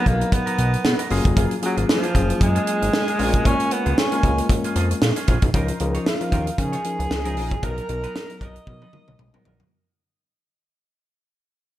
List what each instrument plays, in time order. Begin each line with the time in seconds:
0.06 analog synth bass B1, tine electric piano F#3 B3 D#4 A4, alto saxophone A#3, muted clean electric guitar stroke, kick, closed hi-hat
0.13 tine electric piano A#4
0.20 muted clean electric guitar stroke, closed hi-hat
0.32 alto saxophone B3, muted clean electric guitar stroke, kick, closed hi-hat
0.46 clean electric guitar D#4 F#4 A#4, closed hi-hat
0.58 analog synth bass B1, clean electric guitar D#4 F#4 A#4, closed hi-hat
0.73 muted clean electric guitar stroke, closed hi-hat
0.84 analog synth bass B2, muted clean electric guitar stroke, snare
0.99 clean electric guitar D#4 F#4 A#4, closed hi-hat
1.10 analog synth bass F#1, tine electric piano F#3 A#3 C#4 F4 G#4, clean electric guitar A#3 F4 G#4, open hi-hat
1.25 analog synth bass F1, muted clean electric guitar stroke, kick, closed hi-hat
1.36 analog synth bass F#1, clean electric guitar A#3 F4 G#4, kick, closed hi-hat
1.51 muted clean electric guitar stroke, closed hi-hat
1.62 tine electric piano F#3 A#3 C#4 F4 G#4, alto saxophone F#3, muted clean electric guitar stroke, closed hi-hat
1.77 analog synth bass G#1, clean electric guitar A#3 F4 G#4, closed hi-hat
1.88 alto saxophone F3, muted clean electric guitar stroke, snare
2.03 clean electric guitar A#3 F4 G#4, closed hi-hat
2.15 analog synth bass F#1, tine electric piano F#3 A#3 C#4 F4 G#4, muted clean electric guitar stroke, kick, closed hi-hat
2.29 muted clean electric guitar stroke, closed hi-hat
2.41 analog synth bass F#2, alto saxophone G#3, muted clean electric guitar stroke, kick, closed hi-hat
2.55 clean electric guitar A#3 F4 G#4, closed hi-hat
2.66 clean electric guitar A#3 F4 G#4, closed hi-hat
2.81 analog synth bass G#1, muted clean electric guitar stroke, closed hi-hat
2.93 muted clean electric guitar stroke, snare
3.07 clean electric guitar A#3 F4 G#4, closed hi-hat
3.19 analog synth bass A#1, tine electric piano G#3 A#3 C#4 F4 A#4, clean electric guitar C#4 F4 G#4, open hi-hat
3.33 muted clean electric guitar stroke, kick, closed hi-hat
3.45 analog synth bass A#1, clean electric guitar C#4 F4 G#4, alto saxophone C#4, kick, closed hi-hat
3.60 muted clean electric guitar stroke, closed hi-hat
3.71 alto saxophone B3, muted clean electric guitar stroke, closed hi-hat
3.86 analog synth bass C#2, clean electric guitar C#4 F4 G#4, closed hi-hat
3.98 alto saxophone C#4, muted clean electric guitar stroke, snare
4.12 tine electric piano G#3 A#3 C#4 F4 A#4, clean electric guitar C#4 F4 G#4, closed hi-hat
4.23 analog synth bass C#2, tine electric piano G#3 A#3 C#4 F4 A#4, muted clean electric guitar stroke, kick, closed hi-hat
4.38 muted clean electric guitar stroke, closed hi-hat
4.49 muted clean electric guitar stroke, kick, closed hi-hat
4.64 clean electric guitar C#4 F4 G#4, closed hi-hat
4.75 analog synth bass F2, clean electric guitar C#4 F4 G#4, closed hi-hat
4.91 muted clean electric guitar stroke, closed hi-hat
5.02 analog synth bass A#2, muted clean electric guitar stroke, snare
5.16 clean electric guitar C#4 F4 G#4, closed hi-hat
5.28 analog synth bass A#1, clean electric guitar C#4 F4 G#4, kick, closed hi-hat
5.42 analog synth bass B1, muted clean electric guitar stroke, kick, closed hi-hat
5.54 analog synth bass C#2, tine electric piano F3 C#4 D#4 A#4, clean electric guitar D#4 F4 A#4, kick, closed hi-hat
5.68 closed hi-hat
5.80 analog synth bass C#2, tine electric piano F3 C#4 D#4 A#4, muted clean electric guitar stroke, closed hi-hat
5.94 clean electric guitar D#4 F4 C#5, closed hi-hat
6.06 alto saxophone F4, snare
6.21 tine electric piano F3 C#4 D#4 A#4, muted clean electric guitar stroke, closed hi-hat
6.32 analog synth bass D#2, clean electric guitar D#4 F4 A#4, kick, closed hi-hat
6.47 muted clean electric guitar stroke, closed hi-hat
6.58 analog synth bass C#3, tine electric piano F3 C#4 D#4 A#4, alto saxophone G#4, muted clean electric guitar stroke, kick, closed hi-hat
6.72 clean electric guitar D#4 F4 C#5, closed hi-hat
6.84 tine electric piano F3 C#4 D#4 A#4, muted clean electric guitar stroke, closed hi-hat
6.99 analog synth bass C#2, muted clean electric guitar stroke, closed hi-hat
7.11 analog synth bass C#2, muted clean electric guitar stroke, snare
7.25 tine electric piano F3 C#4 D#4 G#4, clean electric guitar D#4 F4 A#4, closed hi-hat
7.36 analog synth bass A#1, clean electric guitar D#4 F4 A#4, open hi-hat
7.51 muted clean electric guitar stroke, kick, closed hi-hat
7.62 analog synth bass B1, tine electric piano F#3 B3 D#4 A#4, clean electric guitar B3 D#4 A#4, alto saxophone A#4, kick, closed hi-hat
7.77 closed hi-hat
7.89 analog synth bass B1, tine electric piano F#3 B3 D#4 A#4, muted clean electric guitar stroke, closed hi-hat
8.03 clean electric guitar B3 D#4 B4, closed hi-hat
8.16 snare
8.30 tine electric piano F#3 B3 D#4 A#4, muted clean electric guitar stroke, closed hi-hat
8.41 analog synth bass B1, clean electric guitar B3 D#4 A#4, alto saxophone D#5, kick, closed hi-hat
8.56 muted clean electric guitar stroke, closed hi-hat
8.67 analog synth bass B2, tine electric piano F#3 B3 D#4 A#4, muted clean electric guitar stroke, kick, high tom
8.82 clean electric guitar B3 D#4 B4, high tom
8.93 tine electric piano F#3 B3 D#4 A#4, muted clean electric guitar stroke, mid tom
9.08 analog synth bass B1, muted clean electric guitar stroke, mid tom
9.19 analog synth bass B1, muted clean electric guitar stroke, mid tom
9.34 tine electric piano F#3 B3 D#4 A#4, clean electric guitar B3 D#4 A#4, mid tom
9.45 analog synth bass A#1, clean electric guitar B3 D#4 A#4, floor tom
9.60 muted clean electric guitar stroke, floor tom